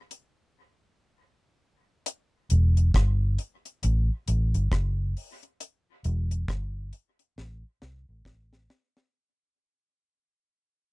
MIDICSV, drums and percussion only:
0, 0, Header, 1, 2, 480
1, 0, Start_track
1, 0, Key_signature, 1, "minor"
1, 0, Tempo, 884695
1, 1117, Time_signature, 4, 2, 24, 8
1, 5926, End_track
2, 0, Start_track
2, 0, Title_t, "Drums"
2, 59, Note_on_c, 9, 42, 51
2, 113, Note_off_c, 9, 42, 0
2, 1118, Note_on_c, 9, 42, 93
2, 1172, Note_off_c, 9, 42, 0
2, 1356, Note_on_c, 9, 42, 63
2, 1410, Note_off_c, 9, 42, 0
2, 1503, Note_on_c, 9, 42, 47
2, 1557, Note_off_c, 9, 42, 0
2, 1597, Note_on_c, 9, 36, 96
2, 1600, Note_on_c, 9, 42, 68
2, 1605, Note_on_c, 9, 37, 98
2, 1651, Note_off_c, 9, 36, 0
2, 1654, Note_off_c, 9, 42, 0
2, 1659, Note_off_c, 9, 37, 0
2, 1837, Note_on_c, 9, 42, 83
2, 1891, Note_off_c, 9, 42, 0
2, 1983, Note_on_c, 9, 42, 52
2, 2037, Note_off_c, 9, 42, 0
2, 2077, Note_on_c, 9, 42, 78
2, 2132, Note_off_c, 9, 42, 0
2, 2320, Note_on_c, 9, 42, 85
2, 2374, Note_off_c, 9, 42, 0
2, 2465, Note_on_c, 9, 42, 53
2, 2519, Note_off_c, 9, 42, 0
2, 2559, Note_on_c, 9, 36, 98
2, 2561, Note_on_c, 9, 42, 63
2, 2565, Note_on_c, 9, 37, 92
2, 2613, Note_off_c, 9, 36, 0
2, 2615, Note_off_c, 9, 42, 0
2, 2619, Note_off_c, 9, 37, 0
2, 2804, Note_on_c, 9, 46, 66
2, 2858, Note_off_c, 9, 46, 0
2, 2946, Note_on_c, 9, 42, 52
2, 3000, Note_off_c, 9, 42, 0
2, 3040, Note_on_c, 9, 42, 92
2, 3095, Note_off_c, 9, 42, 0
2, 3279, Note_on_c, 9, 42, 62
2, 3333, Note_off_c, 9, 42, 0
2, 3424, Note_on_c, 9, 42, 50
2, 3478, Note_off_c, 9, 42, 0
2, 3518, Note_on_c, 9, 36, 114
2, 3521, Note_on_c, 9, 42, 64
2, 3526, Note_on_c, 9, 37, 95
2, 3572, Note_off_c, 9, 36, 0
2, 3575, Note_off_c, 9, 42, 0
2, 3580, Note_off_c, 9, 37, 0
2, 3759, Note_on_c, 9, 42, 76
2, 3813, Note_off_c, 9, 42, 0
2, 3903, Note_on_c, 9, 42, 47
2, 3957, Note_off_c, 9, 42, 0
2, 4003, Note_on_c, 9, 38, 49
2, 4058, Note_off_c, 9, 38, 0
2, 4242, Note_on_c, 9, 38, 64
2, 4296, Note_off_c, 9, 38, 0
2, 4477, Note_on_c, 9, 36, 98
2, 4482, Note_on_c, 9, 38, 72
2, 4531, Note_off_c, 9, 36, 0
2, 4536, Note_off_c, 9, 38, 0
2, 4626, Note_on_c, 9, 38, 70
2, 4681, Note_off_c, 9, 38, 0
2, 4721, Note_on_c, 9, 38, 92
2, 4775, Note_off_c, 9, 38, 0
2, 4865, Note_on_c, 9, 38, 75
2, 4919, Note_off_c, 9, 38, 0
2, 5926, End_track
0, 0, End_of_file